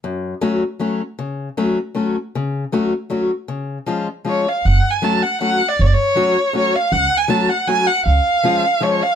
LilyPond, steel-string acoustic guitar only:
\new Staff \with { instrumentName = "Steel-string acoustic guitar" } { \time 3/4 \key fis \minor \tempo 4 = 157 fis,4 <fis a cis' fis'>8 r8 <fis a cis' fis'>8 r8 | cis4 <fis a cis' fis'>8 r8 <fis a cis' fis'>8 r8 | cis4 <fis a cis' fis'>8 r8 <fis a cis' fis'>8 r8 | cis4 <eis gis cis' eis'>8 r8 <eis gis cis' eis'>8 r8 |
r4 <fis a cis' fis'>8 r8 <fis a cis' fis'>8 r8 | r4 <fis a cis' fis'>8 r8 <fis a cis' fis'>8 r8 | r4 <fis a cis' fis'>8 r8 <fis a cis' fis'>8 r8 | r4 <eis gis cis' eis'>8 r8 <eis gis cis' eis'>8 r8 | }